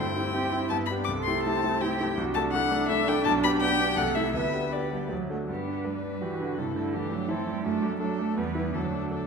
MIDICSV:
0, 0, Header, 1, 5, 480
1, 0, Start_track
1, 0, Key_signature, 1, "major"
1, 0, Tempo, 370828
1, 1397, Time_signature, 3, 2, 24, 8
1, 2352, Tempo, 361228
1, 5232, Tempo, 374065
1, 7632, Tempo, 363416
1, 12140, End_track
2, 0, Start_track
2, 0, Title_t, "Violin"
2, 0, Program_c, 0, 40
2, 0, Note_on_c, 0, 79, 79
2, 885, Note_off_c, 0, 79, 0
2, 898, Note_on_c, 0, 81, 82
2, 998, Note_off_c, 0, 81, 0
2, 1110, Note_on_c, 0, 83, 70
2, 1214, Note_off_c, 0, 83, 0
2, 1347, Note_on_c, 0, 86, 78
2, 1450, Note_off_c, 0, 86, 0
2, 1598, Note_on_c, 0, 84, 71
2, 1840, Note_off_c, 0, 84, 0
2, 1847, Note_on_c, 0, 81, 85
2, 2339, Note_on_c, 0, 79, 74
2, 2359, Note_off_c, 0, 81, 0
2, 2830, Note_off_c, 0, 79, 0
2, 3053, Note_on_c, 0, 81, 88
2, 3154, Note_off_c, 0, 81, 0
2, 3278, Note_on_c, 0, 78, 99
2, 3756, Note_off_c, 0, 78, 0
2, 3764, Note_on_c, 0, 76, 94
2, 4031, Note_on_c, 0, 79, 98
2, 4051, Note_off_c, 0, 76, 0
2, 4240, Note_off_c, 0, 79, 0
2, 4248, Note_on_c, 0, 81, 109
2, 4348, Note_off_c, 0, 81, 0
2, 4500, Note_on_c, 0, 83, 107
2, 4597, Note_off_c, 0, 83, 0
2, 4730, Note_on_c, 0, 79, 109
2, 5203, Note_on_c, 0, 78, 94
2, 5223, Note_off_c, 0, 79, 0
2, 5440, Note_on_c, 0, 76, 79
2, 5460, Note_off_c, 0, 78, 0
2, 5689, Note_off_c, 0, 76, 0
2, 5696, Note_on_c, 0, 76, 75
2, 6183, Note_on_c, 0, 74, 56
2, 6202, Note_off_c, 0, 76, 0
2, 6674, Note_off_c, 0, 74, 0
2, 7145, Note_on_c, 0, 67, 37
2, 7618, Note_on_c, 0, 71, 40
2, 7637, Note_off_c, 0, 67, 0
2, 8587, Note_on_c, 0, 69, 42
2, 8607, Note_off_c, 0, 71, 0
2, 9043, Note_off_c, 0, 69, 0
2, 9050, Note_on_c, 0, 67, 51
2, 9519, Note_on_c, 0, 69, 51
2, 9539, Note_off_c, 0, 67, 0
2, 9978, Note_off_c, 0, 69, 0
2, 9986, Note_on_c, 0, 69, 51
2, 10439, Note_off_c, 0, 69, 0
2, 10466, Note_on_c, 0, 69, 53
2, 10944, Note_on_c, 0, 71, 51
2, 10964, Note_off_c, 0, 69, 0
2, 11442, Note_on_c, 0, 69, 42
2, 11462, Note_off_c, 0, 71, 0
2, 11893, Note_off_c, 0, 69, 0
2, 11939, Note_on_c, 0, 69, 49
2, 12140, Note_off_c, 0, 69, 0
2, 12140, End_track
3, 0, Start_track
3, 0, Title_t, "Grand piano"
3, 0, Program_c, 1, 0
3, 0, Note_on_c, 1, 43, 61
3, 157, Control_c, 1, 64, 127
3, 186, Note_off_c, 1, 43, 0
3, 200, Note_on_c, 1, 60, 43
3, 211, Note_on_c, 1, 64, 42
3, 219, Note_on_c, 1, 67, 47
3, 411, Note_off_c, 1, 60, 0
3, 419, Note_off_c, 1, 64, 0
3, 424, Note_off_c, 1, 67, 0
3, 431, Note_on_c, 1, 60, 44
3, 440, Note_on_c, 1, 64, 42
3, 445, Note_on_c, 1, 67, 46
3, 647, Note_off_c, 1, 60, 0
3, 652, Note_off_c, 1, 64, 0
3, 655, Note_off_c, 1, 67, 0
3, 683, Note_on_c, 1, 60, 40
3, 684, Note_on_c, 1, 64, 42
3, 695, Note_on_c, 1, 67, 44
3, 894, Note_off_c, 1, 60, 0
3, 894, Note_off_c, 1, 64, 0
3, 900, Note_off_c, 1, 67, 0
3, 925, Note_on_c, 1, 43, 56
3, 937, Control_c, 1, 64, 0
3, 1138, Control_c, 1, 64, 127
3, 1153, Note_off_c, 1, 43, 0
3, 1168, Note_on_c, 1, 59, 44
3, 1174, Note_on_c, 1, 62, 43
3, 1183, Note_on_c, 1, 67, 49
3, 1381, Note_off_c, 1, 59, 0
3, 1384, Note_off_c, 1, 62, 0
3, 1389, Note_off_c, 1, 67, 0
3, 1402, Note_on_c, 1, 36, 57
3, 1423, Control_c, 1, 64, 0
3, 1634, Note_off_c, 1, 36, 0
3, 1639, Control_c, 1, 64, 127
3, 1647, Note_on_c, 1, 57, 42
3, 1651, Note_on_c, 1, 64, 40
3, 1653, Note_on_c, 1, 67, 47
3, 1859, Note_off_c, 1, 57, 0
3, 1861, Note_off_c, 1, 64, 0
3, 1862, Note_off_c, 1, 67, 0
3, 1889, Note_on_c, 1, 57, 42
3, 1899, Note_on_c, 1, 64, 43
3, 1904, Note_on_c, 1, 67, 45
3, 2097, Note_off_c, 1, 57, 0
3, 2103, Note_off_c, 1, 64, 0
3, 2106, Note_off_c, 1, 67, 0
3, 2119, Note_on_c, 1, 57, 42
3, 2123, Note_on_c, 1, 64, 40
3, 2129, Note_on_c, 1, 67, 44
3, 2330, Note_off_c, 1, 57, 0
3, 2332, Note_off_c, 1, 64, 0
3, 2335, Note_off_c, 1, 67, 0
3, 2358, Note_on_c, 1, 57, 44
3, 2358, Note_on_c, 1, 64, 46
3, 2369, Note_on_c, 1, 67, 47
3, 2573, Note_off_c, 1, 57, 0
3, 2573, Note_off_c, 1, 64, 0
3, 2580, Note_off_c, 1, 67, 0
3, 2603, Note_on_c, 1, 64, 48
3, 2608, Note_on_c, 1, 57, 46
3, 2613, Note_on_c, 1, 67, 53
3, 2817, Note_off_c, 1, 64, 0
3, 2820, Note_off_c, 1, 57, 0
3, 2823, Note_off_c, 1, 67, 0
3, 2825, Note_on_c, 1, 36, 65
3, 2864, Control_c, 1, 64, 0
3, 3061, Control_c, 1, 64, 127
3, 3064, Note_off_c, 1, 36, 0
3, 3079, Note_on_c, 1, 57, 51
3, 3086, Note_on_c, 1, 69, 52
3, 3088, Note_on_c, 1, 62, 52
3, 3293, Note_off_c, 1, 57, 0
3, 3296, Note_off_c, 1, 62, 0
3, 3298, Note_off_c, 1, 69, 0
3, 3313, Note_on_c, 1, 57, 52
3, 3316, Note_on_c, 1, 62, 50
3, 3328, Note_on_c, 1, 69, 54
3, 3519, Note_off_c, 1, 62, 0
3, 3522, Note_off_c, 1, 57, 0
3, 3528, Note_off_c, 1, 69, 0
3, 3539, Note_on_c, 1, 62, 50
3, 3542, Note_on_c, 1, 57, 49
3, 3547, Note_on_c, 1, 69, 54
3, 3757, Note_off_c, 1, 62, 0
3, 3759, Note_off_c, 1, 57, 0
3, 3766, Note_off_c, 1, 69, 0
3, 3777, Note_on_c, 1, 62, 55
3, 3779, Note_on_c, 1, 57, 57
3, 3790, Note_on_c, 1, 69, 63
3, 3999, Note_off_c, 1, 62, 0
3, 4000, Note_off_c, 1, 57, 0
3, 4006, Note_off_c, 1, 69, 0
3, 4031, Note_on_c, 1, 57, 58
3, 4031, Note_on_c, 1, 62, 61
3, 4037, Note_on_c, 1, 69, 63
3, 4246, Note_off_c, 1, 57, 0
3, 4246, Note_off_c, 1, 62, 0
3, 4250, Note_off_c, 1, 69, 0
3, 4268, Note_on_c, 1, 35, 79
3, 4298, Control_c, 1, 64, 0
3, 4497, Control_c, 1, 64, 127
3, 4501, Note_off_c, 1, 35, 0
3, 4505, Note_on_c, 1, 62, 58
3, 4507, Note_on_c, 1, 59, 57
3, 4512, Note_on_c, 1, 67, 63
3, 4721, Note_off_c, 1, 62, 0
3, 4723, Note_off_c, 1, 59, 0
3, 4725, Note_off_c, 1, 67, 0
3, 4741, Note_on_c, 1, 62, 56
3, 4743, Note_on_c, 1, 59, 57
3, 4745, Note_on_c, 1, 67, 63
3, 4959, Note_off_c, 1, 59, 0
3, 4961, Note_off_c, 1, 62, 0
3, 4963, Note_off_c, 1, 67, 0
3, 4979, Note_on_c, 1, 59, 53
3, 4984, Note_on_c, 1, 62, 52
3, 4987, Note_on_c, 1, 67, 56
3, 5202, Note_off_c, 1, 59, 0
3, 5205, Note_off_c, 1, 62, 0
3, 5205, Note_on_c, 1, 36, 68
3, 5206, Note_off_c, 1, 67, 0
3, 5260, Control_c, 1, 64, 0
3, 5450, Note_off_c, 1, 36, 0
3, 5454, Control_c, 1, 64, 127
3, 5460, Note_on_c, 1, 57, 47
3, 5464, Note_on_c, 1, 64, 47
3, 5466, Note_on_c, 1, 69, 50
3, 5681, Note_on_c, 1, 38, 54
3, 5682, Note_off_c, 1, 57, 0
3, 5685, Note_off_c, 1, 64, 0
3, 5686, Note_off_c, 1, 69, 0
3, 5739, Control_c, 1, 64, 0
3, 5932, Note_off_c, 1, 38, 0
3, 5937, Note_on_c, 1, 67, 37
3, 5941, Note_on_c, 1, 62, 38
3, 5944, Note_on_c, 1, 71, 38
3, 5947, Control_c, 1, 64, 127
3, 6163, Note_off_c, 1, 67, 0
3, 6165, Note_off_c, 1, 62, 0
3, 6167, Note_off_c, 1, 71, 0
3, 6191, Note_on_c, 1, 62, 35
3, 6193, Note_on_c, 1, 67, 36
3, 6202, Note_on_c, 1, 71, 40
3, 6401, Note_off_c, 1, 62, 0
3, 6407, Note_off_c, 1, 67, 0
3, 6409, Note_off_c, 1, 71, 0
3, 6421, Note_on_c, 1, 62, 33
3, 6426, Note_on_c, 1, 67, 32
3, 6428, Note_on_c, 1, 71, 37
3, 6647, Note_off_c, 1, 62, 0
3, 6650, Note_off_c, 1, 67, 0
3, 6651, Note_off_c, 1, 71, 0
3, 6687, Note_on_c, 1, 38, 46
3, 6705, Control_c, 1, 64, 0
3, 6907, Control_c, 1, 64, 127
3, 6914, Note_on_c, 1, 62, 34
3, 6918, Note_off_c, 1, 38, 0
3, 6919, Note_on_c, 1, 66, 36
3, 6926, Note_on_c, 1, 69, 37
3, 7133, Note_off_c, 1, 62, 0
3, 7136, Note_off_c, 1, 66, 0
3, 7140, Note_off_c, 1, 69, 0
3, 7152, Note_on_c, 1, 43, 42
3, 7187, Control_c, 1, 64, 0
3, 7404, Note_on_c, 1, 62, 31
3, 7434, Control_c, 1, 64, 127
3, 7621, Note_on_c, 1, 71, 35
3, 7780, Note_off_c, 1, 62, 0
3, 7860, Note_on_c, 1, 62, 34
3, 8009, Note_off_c, 1, 71, 0
3, 8106, Note_on_c, 1, 67, 37
3, 8248, Note_off_c, 1, 62, 0
3, 8350, Note_on_c, 1, 62, 38
3, 8488, Note_off_c, 1, 67, 0
3, 8536, Note_off_c, 1, 43, 0
3, 8585, Note_off_c, 1, 62, 0
3, 8595, Note_on_c, 1, 43, 48
3, 8607, Control_c, 1, 64, 0
3, 8812, Control_c, 1, 64, 127
3, 8829, Note_on_c, 1, 57, 40
3, 9059, Note_on_c, 1, 69, 43
3, 9204, Note_off_c, 1, 57, 0
3, 9282, Note_on_c, 1, 57, 41
3, 9437, Note_off_c, 1, 69, 0
3, 9519, Note_on_c, 1, 64, 47
3, 9665, Note_off_c, 1, 57, 0
3, 9770, Note_on_c, 1, 57, 47
3, 9902, Note_off_c, 1, 64, 0
3, 9965, Note_off_c, 1, 43, 0
3, 10003, Note_on_c, 1, 42, 58
3, 10004, Note_off_c, 1, 57, 0
3, 10028, Control_c, 1, 64, 0
3, 10237, Note_on_c, 1, 57, 48
3, 10272, Control_c, 1, 64, 127
3, 10466, Note_on_c, 1, 69, 46
3, 10625, Note_off_c, 1, 57, 0
3, 10720, Note_on_c, 1, 57, 42
3, 10861, Note_off_c, 1, 69, 0
3, 10937, Note_off_c, 1, 42, 0
3, 10957, Note_on_c, 1, 40, 54
3, 10964, Note_off_c, 1, 57, 0
3, 10992, Control_c, 1, 64, 0
3, 11185, Note_on_c, 1, 59, 38
3, 11191, Control_c, 1, 64, 127
3, 11193, Note_on_c, 1, 64, 40
3, 11418, Note_off_c, 1, 59, 0
3, 11422, Note_off_c, 1, 64, 0
3, 11428, Note_on_c, 1, 38, 47
3, 11436, Note_off_c, 1, 40, 0
3, 11485, Control_c, 1, 64, 0
3, 11679, Note_on_c, 1, 57, 34
3, 11723, Control_c, 1, 64, 127
3, 11928, Note_on_c, 1, 69, 34
3, 12085, Note_off_c, 1, 57, 0
3, 12140, Note_off_c, 1, 38, 0
3, 12140, Note_off_c, 1, 69, 0
3, 12140, End_track
4, 0, Start_track
4, 0, Title_t, "Viola"
4, 0, Program_c, 2, 41
4, 0, Note_on_c, 2, 60, 59
4, 920, Note_on_c, 2, 59, 53
4, 939, Note_off_c, 2, 60, 0
4, 1158, Note_off_c, 2, 59, 0
4, 1392, Note_on_c, 2, 60, 56
4, 2780, Note_off_c, 2, 60, 0
4, 2836, Note_on_c, 2, 62, 66
4, 5224, Note_on_c, 2, 57, 62
4, 5244, Note_off_c, 2, 62, 0
4, 5708, Note_off_c, 2, 57, 0
4, 5717, Note_on_c, 2, 59, 51
4, 6673, Note_on_c, 2, 54, 42
4, 6692, Note_off_c, 2, 59, 0
4, 6919, Note_off_c, 2, 54, 0
4, 7164, Note_on_c, 2, 62, 40
4, 8110, Note_on_c, 2, 66, 42
4, 8129, Note_off_c, 2, 62, 0
4, 8583, Note_on_c, 2, 64, 43
4, 8603, Note_off_c, 2, 66, 0
4, 9059, Note_on_c, 2, 62, 45
4, 9079, Note_off_c, 2, 64, 0
4, 9529, Note_on_c, 2, 60, 54
4, 9549, Note_off_c, 2, 62, 0
4, 9989, Note_off_c, 2, 60, 0
4, 9997, Note_on_c, 2, 62, 57
4, 10445, Note_off_c, 2, 62, 0
4, 10466, Note_on_c, 2, 62, 52
4, 10939, Note_off_c, 2, 62, 0
4, 10946, Note_on_c, 2, 59, 50
4, 11420, Note_off_c, 2, 59, 0
4, 11428, Note_on_c, 2, 62, 48
4, 12140, Note_off_c, 2, 62, 0
4, 12140, End_track
5, 0, Start_track
5, 0, Title_t, "Cello"
5, 0, Program_c, 3, 42
5, 0, Note_on_c, 3, 64, 55
5, 372, Note_off_c, 3, 64, 0
5, 438, Note_on_c, 3, 67, 67
5, 650, Note_on_c, 3, 64, 60
5, 669, Note_off_c, 3, 67, 0
5, 1161, Note_on_c, 3, 62, 50
5, 1180, Note_off_c, 3, 64, 0
5, 1401, Note_off_c, 3, 62, 0
5, 1431, Note_on_c, 3, 69, 67
5, 2317, Note_off_c, 3, 69, 0
5, 2353, Note_on_c, 3, 67, 62
5, 2827, Note_off_c, 3, 67, 0
5, 2842, Note_on_c, 3, 66, 65
5, 3336, Note_on_c, 3, 64, 71
5, 3356, Note_off_c, 3, 66, 0
5, 4281, Note_off_c, 3, 64, 0
5, 4293, Note_on_c, 3, 62, 78
5, 4719, Note_off_c, 3, 62, 0
5, 4727, Note_on_c, 3, 67, 75
5, 5212, Note_off_c, 3, 67, 0
5, 5241, Note_on_c, 3, 69, 75
5, 5707, Note_off_c, 3, 69, 0
5, 5724, Note_on_c, 3, 71, 55
5, 6430, Note_off_c, 3, 71, 0
5, 6453, Note_on_c, 3, 55, 50
5, 6672, Note_off_c, 3, 55, 0
5, 6699, Note_on_c, 3, 54, 55
5, 6792, Note_off_c, 3, 54, 0
5, 6929, Note_on_c, 3, 57, 54
5, 7024, Note_off_c, 3, 57, 0
5, 7171, Note_on_c, 3, 59, 60
5, 7656, Note_on_c, 3, 55, 56
5, 7676, Note_off_c, 3, 59, 0
5, 8109, Note_on_c, 3, 52, 64
5, 8128, Note_off_c, 3, 55, 0
5, 8366, Note_on_c, 3, 50, 55
5, 8385, Note_off_c, 3, 52, 0
5, 8591, Note_on_c, 3, 48, 65
5, 8611, Note_off_c, 3, 50, 0
5, 8823, Note_off_c, 3, 48, 0
5, 8834, Note_on_c, 3, 50, 63
5, 9067, Note_on_c, 3, 52, 65
5, 9086, Note_off_c, 3, 50, 0
5, 9311, Note_on_c, 3, 54, 64
5, 9331, Note_off_c, 3, 52, 0
5, 9545, Note_on_c, 3, 52, 64
5, 9565, Note_off_c, 3, 54, 0
5, 9758, Note_off_c, 3, 52, 0
5, 9766, Note_on_c, 3, 55, 74
5, 9995, Note_on_c, 3, 57, 82
5, 10015, Note_off_c, 3, 55, 0
5, 10227, Note_on_c, 3, 55, 77
5, 10247, Note_off_c, 3, 57, 0
5, 10459, Note_off_c, 3, 55, 0
5, 10467, Note_on_c, 3, 54, 75
5, 10714, Note_on_c, 3, 57, 69
5, 10734, Note_off_c, 3, 54, 0
5, 10964, Note_on_c, 3, 55, 71
5, 10984, Note_off_c, 3, 57, 0
5, 11458, Note_on_c, 3, 54, 62
5, 11478, Note_off_c, 3, 55, 0
5, 12140, Note_off_c, 3, 54, 0
5, 12140, End_track
0, 0, End_of_file